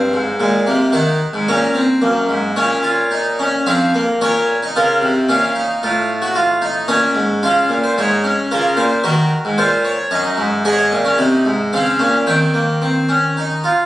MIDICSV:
0, 0, Header, 1, 2, 480
1, 0, Start_track
1, 0, Key_signature, -5, "minor"
1, 0, Tempo, 536193
1, 834, Time_signature, 3, 2, 24, 8
1, 1798, Tempo, 547945
1, 4198, Tempo, 536673
1, 9481, Key_signature, -4, "major"
1, 10438, Tempo, 550459
1, 12297, End_track
2, 0, Start_track
2, 0, Title_t, "Harpsichord"
2, 0, Program_c, 0, 6
2, 0, Note_on_c, 0, 43, 80
2, 0, Note_on_c, 0, 60, 93
2, 0, Note_on_c, 0, 77, 82
2, 106, Note_off_c, 0, 43, 0
2, 119, Note_on_c, 0, 44, 80
2, 175, Note_off_c, 0, 60, 0
2, 350, Note_off_c, 0, 44, 0
2, 355, Note_on_c, 0, 46, 78
2, 355, Note_on_c, 0, 56, 77
2, 587, Note_off_c, 0, 46, 0
2, 587, Note_off_c, 0, 56, 0
2, 596, Note_on_c, 0, 48, 74
2, 597, Note_on_c, 0, 58, 76
2, 801, Note_off_c, 0, 77, 0
2, 826, Note_on_c, 0, 51, 87
2, 827, Note_off_c, 0, 48, 0
2, 828, Note_off_c, 0, 58, 0
2, 828, Note_on_c, 0, 78, 76
2, 829, Note_on_c, 0, 63, 77
2, 1051, Note_off_c, 0, 51, 0
2, 1127, Note_off_c, 0, 78, 0
2, 1128, Note_off_c, 0, 63, 0
2, 1194, Note_on_c, 0, 44, 83
2, 1311, Note_off_c, 0, 44, 0
2, 1327, Note_on_c, 0, 82, 80
2, 1328, Note_on_c, 0, 46, 84
2, 1328, Note_on_c, 0, 61, 81
2, 1555, Note_off_c, 0, 61, 0
2, 1564, Note_on_c, 0, 60, 70
2, 1623, Note_off_c, 0, 46, 0
2, 1795, Note_off_c, 0, 60, 0
2, 1804, Note_on_c, 0, 58, 71
2, 1808, Note_on_c, 0, 42, 76
2, 2033, Note_off_c, 0, 42, 0
2, 2046, Note_on_c, 0, 44, 71
2, 2098, Note_off_c, 0, 58, 0
2, 2253, Note_off_c, 0, 82, 0
2, 2273, Note_off_c, 0, 44, 0
2, 2283, Note_on_c, 0, 73, 62
2, 2285, Note_on_c, 0, 46, 72
2, 2286, Note_on_c, 0, 61, 71
2, 2515, Note_off_c, 0, 61, 0
2, 2516, Note_on_c, 0, 65, 65
2, 2751, Note_off_c, 0, 65, 0
2, 2763, Note_on_c, 0, 63, 75
2, 2995, Note_off_c, 0, 63, 0
2, 3010, Note_on_c, 0, 61, 70
2, 3216, Note_off_c, 0, 73, 0
2, 3218, Note_off_c, 0, 46, 0
2, 3239, Note_off_c, 0, 61, 0
2, 3248, Note_on_c, 0, 60, 64
2, 3249, Note_on_c, 0, 77, 61
2, 3250, Note_on_c, 0, 41, 63
2, 3478, Note_off_c, 0, 60, 0
2, 3494, Note_on_c, 0, 58, 62
2, 3544, Note_off_c, 0, 77, 0
2, 3545, Note_off_c, 0, 41, 0
2, 3721, Note_off_c, 0, 58, 0
2, 3729, Note_on_c, 0, 46, 71
2, 3730, Note_on_c, 0, 70, 100
2, 3730, Note_on_c, 0, 73, 72
2, 3949, Note_off_c, 0, 70, 0
2, 4022, Note_off_c, 0, 46, 0
2, 4023, Note_off_c, 0, 73, 0
2, 4091, Note_on_c, 0, 63, 86
2, 4200, Note_off_c, 0, 63, 0
2, 4207, Note_on_c, 0, 65, 87
2, 4211, Note_on_c, 0, 49, 72
2, 4215, Note_on_c, 0, 70, 76
2, 4437, Note_on_c, 0, 48, 82
2, 4438, Note_off_c, 0, 49, 0
2, 4501, Note_off_c, 0, 65, 0
2, 4506, Note_off_c, 0, 70, 0
2, 4669, Note_off_c, 0, 48, 0
2, 4680, Note_on_c, 0, 46, 74
2, 4681, Note_on_c, 0, 61, 88
2, 4687, Note_on_c, 0, 77, 76
2, 4910, Note_off_c, 0, 61, 0
2, 4916, Note_on_c, 0, 63, 86
2, 4974, Note_off_c, 0, 46, 0
2, 5146, Note_off_c, 0, 63, 0
2, 5165, Note_on_c, 0, 65, 102
2, 5169, Note_on_c, 0, 45, 88
2, 5383, Note_off_c, 0, 65, 0
2, 5513, Note_on_c, 0, 66, 99
2, 5628, Note_off_c, 0, 66, 0
2, 5633, Note_on_c, 0, 65, 112
2, 5864, Note_off_c, 0, 65, 0
2, 5869, Note_on_c, 0, 63, 116
2, 6078, Note_off_c, 0, 77, 0
2, 6089, Note_off_c, 0, 45, 0
2, 6101, Note_off_c, 0, 63, 0
2, 6105, Note_on_c, 0, 73, 85
2, 6106, Note_on_c, 0, 46, 89
2, 6108, Note_on_c, 0, 61, 107
2, 6340, Note_off_c, 0, 46, 0
2, 6345, Note_on_c, 0, 44, 76
2, 6405, Note_off_c, 0, 73, 0
2, 6407, Note_off_c, 0, 61, 0
2, 6582, Note_off_c, 0, 44, 0
2, 6596, Note_on_c, 0, 65, 72
2, 6596, Note_on_c, 0, 77, 81
2, 6600, Note_on_c, 0, 49, 78
2, 6822, Note_off_c, 0, 77, 0
2, 6832, Note_on_c, 0, 46, 71
2, 6833, Note_off_c, 0, 49, 0
2, 6898, Note_off_c, 0, 65, 0
2, 6960, Note_on_c, 0, 72, 73
2, 7070, Note_off_c, 0, 46, 0
2, 7077, Note_off_c, 0, 72, 0
2, 7087, Note_on_c, 0, 44, 75
2, 7087, Note_on_c, 0, 63, 69
2, 7088, Note_on_c, 0, 73, 82
2, 7317, Note_off_c, 0, 63, 0
2, 7321, Note_on_c, 0, 61, 72
2, 7382, Note_off_c, 0, 44, 0
2, 7383, Note_off_c, 0, 73, 0
2, 7553, Note_off_c, 0, 61, 0
2, 7564, Note_on_c, 0, 65, 70
2, 7566, Note_on_c, 0, 70, 78
2, 7569, Note_on_c, 0, 49, 67
2, 7793, Note_on_c, 0, 72, 78
2, 7795, Note_off_c, 0, 70, 0
2, 7795, Note_on_c, 0, 46, 69
2, 7797, Note_off_c, 0, 49, 0
2, 7860, Note_off_c, 0, 65, 0
2, 8029, Note_off_c, 0, 72, 0
2, 8030, Note_off_c, 0, 46, 0
2, 8033, Note_on_c, 0, 70, 75
2, 8036, Note_on_c, 0, 66, 71
2, 8037, Note_on_c, 0, 51, 89
2, 8262, Note_off_c, 0, 51, 0
2, 8334, Note_off_c, 0, 70, 0
2, 8336, Note_off_c, 0, 66, 0
2, 8403, Note_on_c, 0, 44, 84
2, 8518, Note_on_c, 0, 65, 76
2, 8519, Note_off_c, 0, 44, 0
2, 8520, Note_on_c, 0, 46, 92
2, 8520, Note_on_c, 0, 72, 81
2, 8754, Note_off_c, 0, 72, 0
2, 8758, Note_on_c, 0, 73, 76
2, 8817, Note_off_c, 0, 65, 0
2, 8819, Note_off_c, 0, 46, 0
2, 8993, Note_off_c, 0, 73, 0
2, 8993, Note_on_c, 0, 75, 76
2, 8994, Note_on_c, 0, 42, 88
2, 8998, Note_on_c, 0, 63, 76
2, 9230, Note_off_c, 0, 42, 0
2, 9230, Note_on_c, 0, 44, 95
2, 9293, Note_off_c, 0, 75, 0
2, 9296, Note_off_c, 0, 63, 0
2, 9468, Note_off_c, 0, 44, 0
2, 9477, Note_on_c, 0, 68, 87
2, 9477, Note_on_c, 0, 75, 87
2, 9479, Note_on_c, 0, 44, 82
2, 9538, Note_on_c, 0, 73, 72
2, 9539, Note_off_c, 0, 75, 0
2, 9601, Note_on_c, 0, 75, 88
2, 9602, Note_off_c, 0, 73, 0
2, 9700, Note_off_c, 0, 68, 0
2, 9712, Note_off_c, 0, 44, 0
2, 9718, Note_on_c, 0, 46, 82
2, 9832, Note_on_c, 0, 61, 85
2, 9950, Note_off_c, 0, 46, 0
2, 9951, Note_off_c, 0, 61, 0
2, 9951, Note_on_c, 0, 63, 92
2, 9953, Note_on_c, 0, 48, 83
2, 10188, Note_off_c, 0, 48, 0
2, 10197, Note_on_c, 0, 44, 80
2, 10252, Note_off_c, 0, 63, 0
2, 10413, Note_off_c, 0, 75, 0
2, 10432, Note_off_c, 0, 44, 0
2, 10441, Note_on_c, 0, 77, 69
2, 10446, Note_on_c, 0, 49, 72
2, 10446, Note_on_c, 0, 60, 78
2, 10671, Note_on_c, 0, 61, 76
2, 10673, Note_off_c, 0, 49, 0
2, 10673, Note_off_c, 0, 60, 0
2, 10673, Note_on_c, 0, 46, 66
2, 10736, Note_off_c, 0, 77, 0
2, 10906, Note_off_c, 0, 61, 0
2, 10907, Note_off_c, 0, 46, 0
2, 10910, Note_on_c, 0, 79, 76
2, 10913, Note_on_c, 0, 60, 71
2, 10916, Note_on_c, 0, 51, 70
2, 11147, Note_off_c, 0, 60, 0
2, 11150, Note_on_c, 0, 58, 65
2, 11385, Note_off_c, 0, 58, 0
2, 11391, Note_on_c, 0, 60, 72
2, 11625, Note_on_c, 0, 61, 62
2, 11626, Note_off_c, 0, 60, 0
2, 11864, Note_off_c, 0, 61, 0
2, 11873, Note_on_c, 0, 63, 71
2, 12081, Note_off_c, 0, 79, 0
2, 12084, Note_off_c, 0, 51, 0
2, 12108, Note_on_c, 0, 65, 63
2, 12110, Note_off_c, 0, 63, 0
2, 12297, Note_off_c, 0, 65, 0
2, 12297, End_track
0, 0, End_of_file